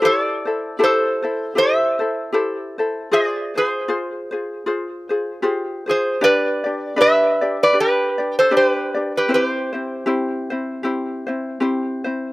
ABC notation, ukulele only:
X:1
M:4/4
L:1/8
Q:"Swing" 1/4=78
K:C
V:1 name="Ukulele"
[EGAc] [EAc] [EGAc] [EAc] [EGAc] [EAc] [EGAc] [EAc] | [F_Ac] [FAc] [FAc] [FAc] [FAc] [FAc] [FGAc] [FAc] | [DGBd] [DGd] [DGBd] [DGd] [DGBd] [DGd] [DGBd] [DGd] | [CEGc] [CEc] [CEGc] [CEc] [CEGc] [CEc] [CEGc] [CEc] |]